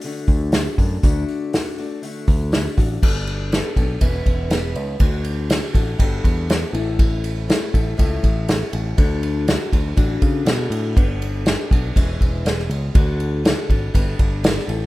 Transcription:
0.01 steel-string acoustic guitar D3 A3, open hi-hat
0.06 steel-string acoustic guitar D4 F#4
0.27 picked electric bass D2, kick, open hi-hat
0.52 steel-string acoustic guitar D3 A3 D4, snare, open hi-hat
0.56 steel-string acoustic guitar F#4
0.78 picked electric bass F#2, steel-string acoustic guitar A3 D4 F#4, kick, open hi-hat
1.03 picked electric bass D2, steel-string acoustic guitar D3 A3 D4 F#4, kick, open hi-hat
1.28 open hi-hat
1.53 steel-string acoustic guitar D3 A3 D4 F#4, snare, open hi-hat
1.78 steel-string acoustic guitar A3 D4 F#4, open hi-hat
2.02 steel-string acoustic guitar D3 A3 D4 F#4, open hi-hat
2.28 picked electric bass D2, kick, open hi-hat
2.52 steel-string acoustic guitar D3 A3 D4 F#4, snare, open hi-hat
2.77 picked electric bass A1, steel-string acoustic guitar A3 D4 F#4, kick, open hi-hat
3.02 picked electric bass G1, steel-string acoustic guitar G3 B3 D4 A4, kick, crash
3.27 ride
3.51 steel-string acoustic guitar G3 B3 D4 A4, snare, ride
3.76 picked electric bass B1, steel-string acoustic guitar B3 D4 A4, kick, ride
4.00 picked electric bass E1, steel-string acoustic guitar E2 E3 G#3 B3 C#4 B4, kick, ride
4.26 picked electric bass E1, kick, ride
4.50 steel-string acoustic guitar G#3 B3 C#4 B4, snare, ride
4.75 picked electric bass C#2, ride
5.00 picked electric bass D2, steel-string acoustic guitar D3 D4 F#4 A4, kick, ride
5.24 ride
5.50 steel-string acoustic guitar D3 D4 F#4 A4, snare, ride
5.73 picked electric bass A1, steel-string acoustic guitar D4 F#4 A4, kick, ride
5.98 picked electric bass G1, steel-string acoustic guitar G3 B3 D4 A4, kick, ride
6.24 picked electric bass E2, kick, ride
6.49 steel-string acoustic guitar G3 B3 D4 A4, snare, ride
6.73 picked electric bass A1, steel-string acoustic guitar A2 A3 C#4 E4 A4, ride
6.99 kick, ride
7.24 ride
7.48 steel-string acoustic guitar A3 C#4 E4 A4, snare, ride
7.72 picked electric bass A1, steel-string acoustic guitar C#4 E4 A4, kick, ride
7.97 picked electric bass C#2, steel-string acoustic guitar A2 A3 C#4 E4 A4, kick, ride
8.23 picked electric bass A1, kick, ride
8.48 steel-string acoustic guitar A3 C#4 E4 A4, snare, ride
8.73 picked electric bass A1, ride
8.97 picked electric bass D2, steel-string acoustic guitar D3 D4 F#4 A4, kick, ride
9.23 ride
9.48 steel-string acoustic guitar D3 D4 F#4 A4, snare, ride
9.73 picked electric bass D2, steel-string acoustic guitar D4 F#4 A4, kick, ride
9.96 picked electric bass A1, steel-string acoustic guitar D3 D4 F#4 A4, kick, ride
10.22 picked electric bass C#3, kick, ride
10.45 picked electric bass B2, steel-string acoustic guitar D3 D4 F#4 A4, snare, ride
10.70 picked electric bass A2, ride
10.96 picked electric bass G1, steel-string acoustic guitar G3 B3 D4 A4, kick, ride
11.22 ride
11.46 steel-string acoustic guitar G3 B3 D4 A4, snare, ride
11.71 picked electric bass B1, steel-string acoustic guitar B3 D4 A4, kick, ride
11.96 picked electric bass E1, steel-string acoustic guitar E2 E3 G#3 B3 C#4 G#4, kick, ride
12.21 picked electric bass E1, kick, ride
12.44 steel-string acoustic guitar G#3 B3 C#4 G#4, snare, ride
12.59 snare
12.69 picked electric bass C#2, ride
12.94 picked electric bass D2, steel-string acoustic guitar D3 D4 F#4 A4, kick, ride
13.20 ride
13.44 steel-string acoustic guitar D3 D4 F#4 A4, snare, ride
13.69 picked electric bass G#1, steel-string acoustic guitar D4 F#4 A4, kick, ride
13.94 picked electric bass G1, steel-string acoustic guitar G3 B3 D4 A4, kick, ride
14.19 picked electric bass G1, kick, ride
14.43 steel-string acoustic guitar G3 B3 D4 A4, snare, ride
14.58 snare
14.67 picked electric bass A1, steel-string acoustic guitar C#4 E4 A4, ride

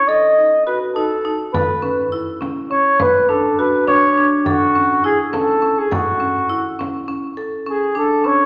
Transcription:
0.08 marimba A4, flugelhorn D#5
0.38 marimba D#4
0.66 marimba F#4, flugelhorn B4
0.94 marimba D#4, flugelhorn A4
1.25 marimba D#4
1.53 marimba A4, flugelhorn B4, frame drum
1.82 marimba C#4, flugelhorn B4, frame drum
2.12 marimba E4
2.41 marimba C#4, frame drum
2.71 marimba C#4, flugelhorn C#5
3.00 marimba B4, flugelhorn B4, frame drum
3.29 marimba D4, flugelhorn A4, frame drum
3.59 marimba F#4, flugelhorn B4
3.88 marimba D4, flugelhorn C#5, frame drum
4.17 marimba D4
4.46 flugelhorn F#4, marimba A4, frame drum
4.75 marimba C#4, frame drum
5.04 marimba E4, flugelhorn G#4
5.33 marimba C#4, flugelhorn A4, frame drum
5.62 marimba C#4
5.78 flugelhorn G#4
5.91 flugelhorn F#4, marimba A4, frame drum
6.20 marimba C#4, frame drum
6.49 marimba E4, frame drum
6.79 marimba C#4, frame drum
7.08 marimba C#4, frame drum
7.37 marimba A4
7.67 marimba C#4, flugelhorn G#4
7.95 marimba D4, flugelhorn A4
8.24 marimba C#4, flugelhorn C#5

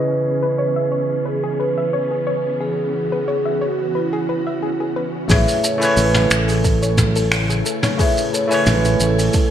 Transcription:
Already playing: tine electric piano C#3 C#4 E4 B4 D#5, string machine E3 B3 C#4 G#4, vibraphone B4
0.43 synth arpeggio sound B4
0.58 vibraphone B4, synth arpeggio sound C#5
0.76 synth arpeggio sound E5
0.92 synth arpeggio sound C#5
1.26 vibraphone G#4, synth arpeggio sound B4
1.44 synth arpeggio sound G#4
1.60 synth arpeggio sound B4, vibraphone B4
1.78 synth arpeggio sound E5
1.93 synth arpeggio sound C#5
2.11 synth arpeggio sound G#4
2.27 synth arpeggio sound C#5
2.60 string machine F#4, synth arpeggio sound G#4, vibraphone G#4
3.12 synth arpeggio sound B4
3.28 vibraphone G#4, synth arpeggio sound C#5
3.45 synth arpeggio sound E5
3.61 vibraphone F#4, synth arpeggio sound C#5
3.95 vibraphone E4, synth arpeggio sound B4
4.13 synth arpeggio sound G#4
4.29 synth arpeggio sound B4
4.47 synth arpeggio sound E5
4.63 synth arpeggio sound G#4
4.80 synth arpeggio sound G#4
4.96 synth arpeggio sound B4
5.28 fretless electric bass A1, string machine C#3 A3 E4 G#5, tine electric piano A3 E4 G#4 B4 C#5, synth arpeggio sound G#4, kick, mid tom, open hi-hat, shaker
5.32 vibraphone E5
5.48 open hi-hat, shaker
5.63 synth arpeggio sound A4, vibraphone C#5, shaker
5.78 tine electric piano A3 E4 G#5, synth arpeggio sound C#5, open hi-hat, shaker
5.83 tine electric piano B4 C#5
5.97 fretless electric bass A1, vibraphone B4, open hi-hat, shaker
6.14 synth arpeggio sound A4, mid tom, open hi-hat, shaker
6.31 fretless electric bass A1, vibraphone A4, finger snap, shaker
6.48 synth arpeggio sound G#4, open hi-hat, shaker
6.64 synth arpeggio sound A4, kick, open hi-hat, shaker
6.82 synth arpeggio sound C#5, shaker
6.98 kick, mid tom, shaker
7.15 synth arpeggio sound A4, open hi-hat, shaker
7.32 finger snap, open hi-hat, shaker
7.50 synth arpeggio sound G#4, shaker
7.66 synth arpeggio sound A4, shaker
7.83 synth arpeggio sound C#5, mid tom, open hi-hat, shaker
7.98 tine electric piano A3 E4 G#4 B4 C#5, synth arpeggio sound G#4, vibraphone E5, kick, open hi-hat, shaker
8.17 open hi-hat, shaker
8.34 synth arpeggio sound A4, vibraphone C#5, shaker
8.48 tine electric piano A3 E4 G#5, synth arpeggio sound C#5, shaker
8.52 tine electric piano B4 C#5, open hi-hat
8.67 fretless electric bass A1, vibraphone B4, mid tom, open hi-hat, shaker
8.85 synth arpeggio sound A4, open hi-hat, shaker
9.00 fretless electric bass A1, vibraphone A4, shaker
9.18 synth arpeggio sound G#4, open hi-hat, shaker
9.33 synth arpeggio sound A4, kick, open hi-hat, shaker

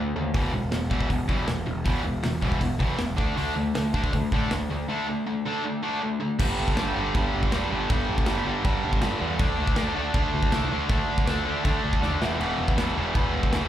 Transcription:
Already playing: picked electric bass D2, distorted electric guitar D3 A3
0.16 picked electric bass D#2, distorted electric guitar D3 A3
0.34 picked electric bass E1, distorted electric guitar E2 B2 E3, kick, open hi-hat
0.53 picked electric bass E1, distorted electric guitar E2 B2
0.72 picked electric bass E1, distorted electric guitar E2 B2, snare, open hi-hat
0.90 picked electric bass E1, distorted electric guitar E2 B2 E3, kick
1.01 kick
1.09 picked electric bass E1, distorted electric guitar E2 B2, kick, open hi-hat
1.28 picked electric bass B1, distorted electric guitar E2 B2 E3, kick
1.48 picked electric bass E1, distorted electric guitar E2 B2, snare, open hi-hat
1.66 picked electric bass E1, distorted electric guitar E2 B2
1.84 picked electric bass E1, distorted electric guitar E2 B2 E3, kick, open hi-hat
2.03 picked electric bass E1, distorted electric guitar E2 B2
2.23 picked electric bass E1, distorted electric guitar E2 B2, snare, open hi-hat
2.41 picked electric bass E1, distorted electric guitar E2 B2 E3, kick
2.52 kick
2.60 picked electric bass E1, distorted electric guitar E2 B2, kick, open hi-hat
2.79 picked electric bass B1, distorted electric guitar E2 B2 E3, kick
2.98 picked electric bass E1, distorted electric guitar E2 B2, snare, open hi-hat
3.17 picked electric bass D2, distorted electric guitar D3 A3 D4, kick
3.37 picked electric bass D2, distorted electric guitar D3 A3 D4, open hi-hat
3.56 picked electric bass D2, distorted electric guitar D3 A3
3.75 picked electric bass D2, distorted electric guitar D3 A3, snare, open hi-hat
3.94 picked electric bass D2, distorted electric guitar D3 A3 D4, kick
4.04 kick
4.13 picked electric bass D2, distorted electric guitar D3 A3, kick, open hi-hat
4.32 picked electric bass A2, distorted electric guitar D3 A3 D4, kick
4.51 picked electric bass D2, distorted electric guitar D3 A3, snare, open hi-hat
4.70 picked electric bass D2, distorted electric guitar D3 A3
4.88 distorted electric guitar D3 A3 D4
5.08 distorted electric guitar D3 A3
5.26 distorted electric guitar D3 A3
5.46 distorted electric guitar D3 A3 D4
5.65 distorted electric guitar D3 A3
5.83 distorted electric guitar D3 A3 D4
6.02 distorted electric guitar D3 A3
6.20 distorted electric guitar D3 A3
6.39 picked electric bass G1, distorted electric guitar G2 D3 G3, kick, crash
6.60 picked electric bass G1
6.68 kick
6.76 picked electric bass G1, distorted electric guitar G2 D3 G3, snare, crash
6.95 picked electric bass G1, distorted electric guitar G2 D3 G3
7.15 picked electric bass G1, distorted electric guitar G2 D3 G3, kick, crash
7.35 picked electric bass G1
7.43 kick
7.52 picked electric bass E1, distorted electric guitar G2 D3 G3, snare, crash
7.71 picked electric bass G1, distorted electric guitar G2 D3 G3
7.90 picked electric bass G1, distorted electric guitar G2 D3 G3, kick, crash
8.09 picked electric bass G1
8.18 kick
8.26 picked electric bass G1, distorted electric guitar G2 D3 G3, snare, crash
8.46 distorted electric guitar G2 D3 G3
8.64 distorted electric guitar G2 D3 G3, picked electric bass G2, kick, crash
8.84 picked electric bass G1
8.93 kick
9.01 picked electric bass G1, distorted electric guitar G2 D3 G3, snare, crash
9.20 picked electric bass E2, distorted electric guitar G2 D3 G3
9.39 picked electric bass D2, distorted electric guitar D3 A3 D4, kick, crash
9.58 picked electric bass D2
9.67 kick
9.76 picked electric bass D2, distorted electric guitar D3 A3 D4, snare, crash
9.95 picked electric bass D2, distorted electric guitar D3 A3 D4
10.14 picked electric bass D2, distorted electric guitar D3 A3 D4, kick, crash
10.34 picked electric bass D2
10.43 kick
10.52 picked electric bass C2, distorted electric guitar D3 A3 D4, snare, crash
10.71 picked electric bass D2, distorted electric guitar D3 A3 D4
10.89 picked electric bass D2, distorted electric guitar D3 A3 D4, kick, crash
11.09 picked electric bass D2
11.18 kick
11.26 picked electric bass D2, distorted electric guitar D3 A3 D4, snare, crash
11.45 distorted electric guitar D3 A3 D4
11.64 distorted electric guitar D3 A3 D4, picked electric bass D3, kick, crash
11.84 picked electric bass D2
11.93 kick
12.02 picked electric bass D#2, distorted electric guitar D3 A3 D4, snare
12.20 picked electric bass E1, distorted electric guitar E2 B2 E3, snare
12.39 picked electric bass E1, distorted electric guitar E2 B2 E3, crash
12.58 picked electric bass E1
12.68 kick
12.76 picked electric bass E1, distorted electric guitar E2 B2 E3, snare, crash
12.96 picked electric bass E1, distorted electric guitar E2 B2 E3
13.14 picked electric bass E1, distorted electric guitar E2 B2 E3, kick, crash
13.34 picked electric bass E1
13.43 kick
13.51 picked electric bass D2, distorted electric guitar E2 B2 E3, snare, crash

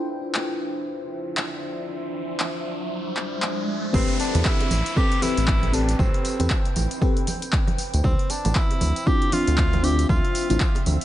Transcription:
Already playing: ambient pad F3 D4 C5 E5, fm electric piano D4 E4 F4 C5, riser
0.35 clap
1.37 clap
2.40 clap
3.17 clap
3.42 clap
3.93 analog synth bass A1, fm electric piano C4 G4 A4 B4, ambient pad C4 B4 G5, tenor saxophone C4, kick, tambourine, crash, downlifter, high conga
4.09 closed hi-hat
4.20 tenor saxophone D4, open hi-hat, tambourine, high bongo
4.35 analog synth bass E2, closed hi-hat, tambourine, high conga, low conga
4.45 tenor saxophone E4, kick, clap, tambourine
4.60 closed hi-hat, high bongo
4.71 analog synth bass A1, open hi-hat, tambourine, high conga
4.86 closed hi-hat, tambourine
4.96 fm electric piano C4 G4 A4 B4, tenor saxophone G4, kick, tambourine
5.12 closed hi-hat
5.22 fm electric piano C4 G4 A4 B4, tenor saxophone E4, open hi-hat, tambourine, high conga
5.37 analog synth bass A1, closed hi-hat, tambourine
5.48 kick, clap, tambourine
5.63 closed hi-hat, high conga
5.72 fm electric piano C4 G4 A4 B4, tenor saxophone D4, open hi-hat, tambourine
5.89 closed hi-hat, tambourine
5.99 analog synth bass A1, tenor saxophone C4, kick, tambourine, high conga
6.14 closed hi-hat
6.25 open hi-hat, tambourine
6.39 analog synth bass E2, fm electric piano C4 G4 A4 B4, closed hi-hat, tambourine, high conga, low conga
6.50 kick, clap, tambourine
6.65 closed hi-hat
6.76 analog synth bass A1, open hi-hat, tambourine, high conga
6.91 closed hi-hat, tambourine
7.01 fm electric piano C4 G4 A4 B4, kick, tambourine
7.17 closed hi-hat
7.27 open hi-hat, tambourine, high bongo, high conga
7.42 closed hi-hat, tambourine
7.53 kick, clap, tambourine
7.67 closed hi-hat, high conga
7.78 open hi-hat, tambourine
7.94 analog synth bass D2, closed hi-hat, tambourine
8.04 analog synth bass D2, ambient pad F3 E5, tenor saxophone C4, kick, tambourine, high conga
8.19 closed hi-hat
8.30 tenor saxophone D4, open hi-hat, tambourine, high bongo
8.45 analog synth bass A1, closed hi-hat, tambourine, high conga, low conga
8.55 tenor saxophone E4, kick, clap, tambourine
8.71 closed hi-hat, high bongo
8.81 analog synth bass D2, open hi-hat, tambourine, high conga
8.96 closed hi-hat, tambourine
9.06 fm electric piano C4 D4 E4 F4, tenor saxophone G4, kick, tambourine
9.22 closed hi-hat
9.32 fm electric piano C4 D4 F4 E5, tenor saxophone F4, open hi-hat, tambourine, high conga
9.47 analog synth bass D2, closed hi-hat, tambourine
9.58 kick, clap, tambourine
9.73 closed hi-hat, high conga
9.83 fm electric piano C4 D4 F4 E5, tenor saxophone G4, open hi-hat, tambourine
9.99 closed hi-hat, tambourine
10.09 analog synth bass D2, tenor saxophone F4, kick, tambourine, high conga
10.25 closed hi-hat
10.35 open hi-hat, tambourine
10.50 analog synth bass A1, fm electric piano C4 D4 E4 F4, closed hi-hat, tambourine, high conga, low conga
10.60 kick, clap, tambourine
10.75 closed hi-hat, high bongo
10.86 analog synth bass D2, open hi-hat, tambourine, high conga
11.01 closed hi-hat

